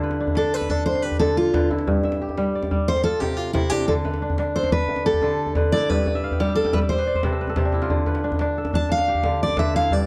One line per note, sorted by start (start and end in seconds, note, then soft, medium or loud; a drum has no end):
0.00 1.19 D3 medium
0.00 1.35 E4 medium
0.00 1.21 F4 medium
0.00 0.86 G4 medium
0.00 0.54 A4 medium
0.00 1.26 B4 medium
0.11 djembe slap soft
0.20 0.37 D4 medium
0.27 djembe tone medium
0.27 djembe bass medium
0.35 0.70 D4 medium
0.35 0.54 A4 medium
0.35 djembe slap medium
0.54 1.86 A4 medium
0.54 0.70 B4 loud
0.61 djembe slap soft
0.61 djembe tone soft
0.69 2.38 D4 medium
0.69 0.85 A4 medium
0.69 djembe bass medium
0.86 1.02 C5 medium
0.86 djembe tone medium
0.95 djembe slap soft
1.02 2.21 G4 medium
1.02 1.19 B4 loud
1.02 djembe slap soft
1.11 djembe slap soft
1.11 djembe bass medium
1.19 1.52 D3 medium
1.19 1.36 A4 medium
1.19 djembe slap medium
1.19 djembe tone medium
1.29 djembe slap soft
1.37 1.68 F4 medium
1.37 djembe slap soft
1.45 djembe slap soft
1.54 1.93 D3 medium
1.54 2.77 B4 medium
1.54 djembe slap medium
1.54 djembe bass medium
1.70 3.11 E4 medium
1.70 djembe tone medium
1.79 djembe slap medium
1.87 2.93 G2 medium
1.87 djembe bass medium
2.03 3.11 E5 medium
2.03 djembe tone medium
2.12 djembe slap medium
2.21 3.63 G4 medium
2.29 djembe tone medium
2.37 2.70 G3 medium
2.37 djembe slap medium
2.55 3.66 D5 medium
2.62 djembe slap soft
2.62 djembe tone soft
2.71 2.93 G3 medium
2.71 djembe bass medium
2.88 3.03 C5 loud
2.88 djembe tone medium
2.96 djembe slap medium
3.04 4.56 F4 medium
3.04 3.20 A4 medium
3.14 djembe slap soft
3.20 3.53 C3 medium
3.20 3.37 G4 medium
3.20 djembe slap medium
3.20 djembe tone medium
3.29 djembe slap soft
3.37 3.53 F4 medium
3.46 djembe slap soft
3.53 3.93 C3 medium
3.53 3.70 E4 medium
3.53 djembe slap medium
3.53 djembe bass medium
3.70 4.21 D4 medium
3.70 3.87 G4 loud
3.70 djembe tone medium
3.80 djembe slap soft
3.88 5.21 D3 medium
3.88 3.93 A4 medium
3.88 djembe bass medium
4.05 5.28 B4 medium
4.05 djembe tone medium
4.14 djembe slap medium
4.22 4.39 D4 medium
4.30 djembe tone medium
4.30 djembe bass medium
4.38 4.72 D4 medium
4.38 djembe slap medium
4.56 5.87 A4 medium
4.56 4.71 C5 medium
4.63 djembe slap soft
4.63 djembe tone soft
4.71 6.40 D4 medium
4.71 5.03 B4 medium
4.71 djembe bass medium
4.88 djembe tone medium
4.96 djembe slap medium
5.05 6.47 G4 medium
5.05 5.53 A4 loud
5.05 djembe slap soft
5.13 djembe slap soft
5.13 djembe bass medium
5.21 5.55 D3 medium
5.21 djembe tone medium
5.29 djembe slap soft
5.39 djembe slap soft
5.46 djembe slap soft
5.46 djembe tone medium
5.55 5.94 D3 medium
5.55 6.79 B4 medium
5.55 djembe slap medium
5.55 djembe bass medium
5.72 6.30 E4 medium
5.72 5.90 D5 loud
5.72 djembe tone medium
5.81 djembe slap medium
5.89 6.95 G2 medium
5.89 6.40 B4 medium
5.89 djembe bass medium
6.06 6.40 D5 medium
6.06 djembe slap soft
6.06 djembe tone medium
6.15 6.48 E5 medium
6.24 6.55 F5 medium
6.31 6.65 G5 medium
6.31 djembe tone medium
6.31 djembe bass medium
6.40 6.72 G3 medium
6.40 6.55 G4 medium
6.40 6.81 D5 medium
6.40 djembe slap medium
6.48 6.73 E5 medium
6.48 djembe slap soft
6.55 6.73 A4 medium
6.55 6.79 F5 medium
6.55 djembe slap soft
6.65 7.58 G5 medium
6.65 djembe slap medium
6.65 djembe tone soft
6.73 6.95 G3 medium
6.73 6.78 B4 medium
6.73 7.77 E5 medium
6.73 djembe bass medium
6.82 7.07 D5 medium
6.89 7.21 C5 medium
6.89 7.15 C5 medium
6.89 djembe slap soft
6.89 djembe tone medium
6.98 7.21 B4 medium
6.98 djembe slap medium
7.07 8.18 D5 medium
7.14 7.47 C5 medium
7.14 djembe slap soft
7.14 djembe bass medium
7.23 7.56 C3 medium
7.23 7.41 B4 medium
7.23 djembe slap medium
7.23 djembe tone medium
7.32 7.49 A4 medium
7.41 7.63 B4 medium
7.47 8.57 A4 medium
7.47 djembe slap soft
7.47 djembe tone medium
7.56 7.95 C3 medium
7.56 8.98 G4 medium
7.56 djembe slap medium
7.56 djembe bass medium
7.65 8.24 D4 medium
7.65 djembe slap soft
7.72 9.30 E4 medium
7.72 djembe tone medium
7.82 9.33 F4 medium
7.82 djembe slap medium
7.90 9.23 D3 medium
7.90 djembe bass medium
8.06 9.30 B4 medium
8.06 djembe tone medium
8.15 djembe slap medium
8.24 8.40 D4 medium
8.32 djembe tone medium
8.32 djembe bass medium
8.39 8.73 D4 medium
8.39 djembe slap medium
8.58 9.89 A4 medium
8.65 djembe slap medium
8.65 djembe tone medium
8.73 10.06 D4 medium
8.73 8.90 A5 loud
8.73 djembe bass medium
8.89 9.42 F5 loud
8.89 djembe tone medium
8.98 djembe slap medium
9.06 10.06 G4 medium
9.06 djembe slap soft
9.15 djembe slap soft
9.15 djembe bass medium
9.23 9.57 D3 medium
9.23 djembe slap medium
9.23 djembe tone medium
9.32 djembe slap soft
9.41 9.59 D5 medium
9.41 djembe slap soft
9.49 djembe slap soft
9.49 djembe tone medium
9.57 9.96 D3 medium
9.57 10.06 B4 medium
9.57 9.74 E5 medium
9.57 djembe slap medium
9.57 djembe bass medium
9.75 10.06 E4 medium
9.75 9.93 F5 loud
9.75 djembe tone medium
9.82 djembe slap medium
9.91 10.06 G2 medium
9.91 10.06 D5 medium
9.91 djembe bass medium